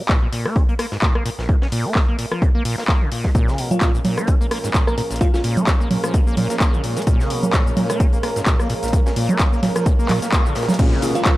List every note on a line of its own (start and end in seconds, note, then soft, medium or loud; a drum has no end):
0.00 11.37 A#4 medium
0.00 11.37 F5 medium
0.00 11.37 A#5 medium
0.09 0.20 A#2 medium
0.09 kick loud
0.09 snare loud
0.09 clap loud
0.09 closed hi-hat medium
0.22 0.28 A#2 medium
0.33 0.47 A#2 medium
0.33 closed hi-hat medium
0.33 open hi-hat loud
0.46 0.57 A#3 medium
0.46 cross-stick medium
0.56 0.63 C#4 medium
0.56 kick loud
0.56 closed hi-hat medium
0.69 0.74 A#3 medium
0.69 closed hi-hat soft
0.79 0.86 A#3 medium
0.79 cross-stick medium
0.79 closed hi-hat medium
0.79 open hi-hat loud
0.92 0.98 G#2 medium
0.92 snare soft
1.02 1.13 A#2 medium
1.02 kick loud
1.02 snare loud
1.02 clap loud
1.02 closed hi-hat medium
1.15 1.24 A#3 medium
1.15 cross-stick medium
1.26 1.30 A#2 loud
1.26 closed hi-hat medium
1.26 open hi-hat loud
1.39 1.50 A#1 medium
1.39 snare soft
1.49 1.56 A#2 medium
1.49 kick loud
1.49 closed hi-hat medium
1.62 1.68 C#4 medium
1.62 snare medium
1.72 1.87 A#2 loud
1.72 closed hi-hat medium
1.72 open hi-hat loud
1.85 1.94 A#3 loud
1.95 2.00 A#3 medium
1.95 kick loud
1.95 snare loud
1.95 clap loud
1.95 closed hi-hat medium
2.08 2.17 A#3 medium
2.19 2.26 A#2 medium
2.19 open hi-hat loud
2.19 open hi-hat medium
2.31 2.43 F3 medium
2.31 cross-stick medium
2.31 closed hi-hat soft
2.42 2.49 A#2 medium
2.42 kick loud
2.42 closed hi-hat medium
2.55 2.63 A#3 loud
2.65 2.76 A#2 loud
2.65 closed hi-hat medium
2.65 open hi-hat loud
2.78 2.84 A#3 medium
2.78 snare medium
2.88 3.03 A#3 medium
2.88 kick loud
2.88 snare loud
2.88 clap loud
2.88 closed hi-hat medium
3.01 3.10 C#3 medium
3.12 3.26 A#2 medium
3.12 closed hi-hat medium
3.12 open hi-hat loud
3.24 3.30 A#3 loud
3.24 kick medium
3.24 snare soft
3.35 3.49 A#2 loud
3.35 10.75 A#2 medium
3.35 10.75 F3 medium
3.35 10.75 G#3 medium
3.35 10.75 C#4 medium
3.35 kick loud
3.35 closed hi-hat medium
3.35 shaker medium
3.48 3.60 C#3 medium
3.48 snare soft
3.48 shaker soft
3.58 3.73 B2 medium
3.58 closed hi-hat medium
3.58 open hi-hat loud
3.71 3.75 A#3 medium
3.71 3.78 F4 medium
3.71 closed hi-hat soft
3.71 low conga medium
3.71 shaker medium
3.81 3.92 A#2 medium
3.81 3.90 F4 medium
3.81 kick loud
3.81 snare loud
3.81 clap loud
3.81 closed hi-hat medium
3.81 shaker medium
3.94 4.00 A#2 medium
3.94 shaker soft
4.05 4.19 A#2 medium
4.05 closed hi-hat medium
4.05 open hi-hat loud
4.05 low conga medium
4.18 4.29 A#3 medium
4.18 cross-stick medium
4.18 closed hi-hat soft
4.18 shaker medium
4.27 4.35 C#4 medium
4.27 kick loud
4.27 closed hi-hat medium
4.27 shaker medium
4.41 4.47 A#3 medium
4.41 closed hi-hat soft
4.41 shaker soft
4.51 4.58 A#3 medium
4.51 cross-stick medium
4.51 closed hi-hat medium
4.51 open hi-hat loud
4.64 4.70 G#2 medium
4.64 snare soft
4.64 closed hi-hat soft
4.64 shaker medium
4.74 4.85 A#2 medium
4.74 kick loud
4.74 snare loud
4.74 clap loud
4.74 closed hi-hat medium
4.74 shaker medium
4.87 4.96 A#3 medium
4.87 4.94 A#4 medium
4.87 cross-stick medium
4.87 shaker soft
4.98 5.02 A#2 medium
4.98 5.06 A#4 medium
4.98 closed hi-hat medium
4.98 open hi-hat loud
5.11 5.22 A#1 medium
5.11 snare soft
5.11 closed hi-hat soft
5.11 shaker medium
5.16 closed hi-hat medium
5.21 5.28 A#2 medium
5.21 5.29 F4 medium
5.21 kick loud
5.21 closed hi-hat medium
5.21 shaker medium
5.34 5.40 C#4 medium
5.34 5.40 F4 medium
5.34 snare medium
5.34 shaker soft
5.44 5.59 A#2 loud
5.44 closed hi-hat medium
5.44 open hi-hat loud
5.57 5.66 A#3 loud
5.57 closed hi-hat soft
5.57 low conga medium
5.57 shaker medium
5.67 kick loud
5.67 snare loud
5.67 clap loud
5.67 closed hi-hat medium
5.67 shaker medium
5.80 5.89 A#3 medium
5.80 shaker soft
5.91 5.98 A#2 medium
5.91 open hi-hat loud
5.91 open hi-hat medium
5.91 low conga medium
6.03 6.16 F3 medium
6.03 cross-stick medium
6.03 closed hi-hat soft
6.03 closed hi-hat medium
6.03 shaker medium
6.14 6.21 A#2 medium
6.14 kick loud
6.14 closed hi-hat medium
6.14 shaker medium
6.27 6.35 A#3 loud
6.27 shaker soft
6.37 6.48 A#2 loud
6.37 closed hi-hat medium
6.37 open hi-hat loud
6.37 low conga medium
6.50 6.56 A#3 medium
6.50 snare medium
6.50 closed hi-hat medium
6.50 shaker medium
6.60 6.75 A#3 medium
6.60 kick loud
6.60 snare loud
6.60 clap loud
6.60 closed hi-hat medium
6.60 shaker medium
6.73 6.82 C#3 medium
6.73 shaker soft
6.84 6.98 A#2 medium
6.84 closed hi-hat medium
6.84 open hi-hat medium
6.97 7.02 A#3 loud
6.97 snare soft
6.97 closed hi-hat soft
6.97 shaker medium
7.02 closed hi-hat medium
7.07 7.21 A#2 loud
7.07 kick loud
7.07 closed hi-hat medium
7.07 shaker medium
7.20 7.32 C#3 medium
7.20 snare soft
7.20 shaker soft
7.30 7.45 B2 medium
7.30 closed hi-hat medium
7.30 open hi-hat loud
7.43 7.47 A#3 medium
7.43 closed hi-hat medium
7.43 low conga medium
7.43 shaker medium
7.53 7.64 A#2 medium
7.53 kick loud
7.53 snare loud
7.53 clap loud
7.53 closed hi-hat medium
7.53 shaker medium
7.66 7.72 A#2 medium
7.66 shaker soft
7.77 7.91 A#2 medium
7.77 closed hi-hat medium
7.77 open hi-hat loud
7.77 low conga medium
7.90 8.02 A#3 medium
7.90 cross-stick medium
7.90 closed hi-hat medium
7.90 shaker medium
8.00 8.07 C#4 medium
8.00 kick loud
8.00 closed hi-hat medium
8.00 shaker medium
8.13 8.19 A#3 medium
8.13 closed hi-hat soft
8.13 shaker soft
8.23 8.30 A#3 medium
8.23 cross-stick medium
8.23 closed hi-hat medium
8.23 open hi-hat loud
8.36 8.42 G#2 medium
8.36 snare soft
8.36 closed hi-hat medium
8.36 shaker medium
8.46 8.57 A#2 medium
8.46 kick loud
8.46 snare loud
8.46 clap loud
8.46 closed hi-hat medium
8.46 shaker medium
8.59 8.68 A#3 medium
8.59 cross-stick medium
8.59 shaker soft
8.69 8.74 A#2 loud
8.69 closed hi-hat medium
8.69 open hi-hat loud
8.83 8.95 A#1 medium
8.83 snare soft
8.83 closed hi-hat soft
8.83 shaker medium
8.88 closed hi-hat medium
8.93 9.00 A#2 medium
8.93 kick loud
8.93 closed hi-hat medium
8.93 shaker medium
9.06 9.12 C#4 medium
9.06 snare medium
9.06 shaker soft
9.16 9.31 A#2 loud
9.16 closed hi-hat medium
9.16 open hi-hat loud
9.29 9.38 A#3 loud
9.29 closed hi-hat medium
9.29 low conga medium
9.29 shaker medium
9.39 9.44 A#3 medium
9.39 kick loud
9.39 snare loud
9.39 clap loud
9.39 closed hi-hat medium
9.39 shaker medium
9.53 9.61 A#3 medium
9.53 shaker soft
9.63 9.70 A#2 medium
9.63 snare loud
9.63 closed hi-hat medium
9.63 open hi-hat loud
9.63 low conga medium
9.75 9.88 F3 medium
9.75 cross-stick medium
9.75 closed hi-hat soft
9.75 closed hi-hat medium
9.75 shaker medium
9.86 9.93 A#2 medium
9.86 kick loud
9.86 closed hi-hat medium
9.86 shaker medium
9.99 10.08 A#3 loud
9.99 shaker soft
10.09 10.20 A#2 loud
10.09 clap medium
10.09 closed hi-hat medium
10.09 open hi-hat loud
10.09 low conga medium
10.22 10.28 A#3 medium
10.22 snare soft
10.22 closed hi-hat medium
10.22 shaker medium
10.32 10.47 A#3 medium
10.32 kick loud
10.32 snare loud
10.32 clap loud
10.32 closed hi-hat medium
10.32 shaker medium
10.46 10.54 C#3 medium
10.46 shaker soft
10.55 10.70 A#2 medium
10.55 snare medium
10.55 closed hi-hat medium
10.55 open hi-hat loud
10.62 snare medium
10.62 closed hi-hat medium
10.68 10.74 A#3 loud
10.68 snare medium
10.68 closed hi-hat soft
10.68 closed hi-hat medium
10.68 low conga medium
10.68 shaker medium
10.74 snare medium
10.74 closed hi-hat medium
10.79 10.94 A#2 loud
10.79 11.37 A#2 medium
10.79 11.37 F3 medium
10.79 11.37 G#3 medium
10.79 10.94 A#3 loud
10.79 10.94 C#4 medium
10.79 11.37 C#4 medium
10.79 10.94 F4 medium
10.79 10.94 G#4 loud
10.79 kick loud
10.79 closed hi-hat medium
10.79 crash loud
10.79 downlifter medium
10.79 shaker soft
10.92 11.04 C#3 medium
10.92 snare soft
11.02 11.17 B2 medium
11.02 11.12 A#3 loud
11.02 11.12 C#4 medium
11.02 11.12 F4 medium
11.02 11.12 G#4 loud
11.02 closed hi-hat medium
11.02 open hi-hat loud
11.02 shaker medium
11.15 11.19 A#3 medium
11.15 11.22 F4 medium
11.15 closed hi-hat medium
11.15 shaker soft
11.25 11.36 A#2 medium
11.25 11.34 F4 medium
11.25 kick loud
11.25 snare loud
11.25 clap loud
11.25 closed hi-hat medium
11.25 shaker soft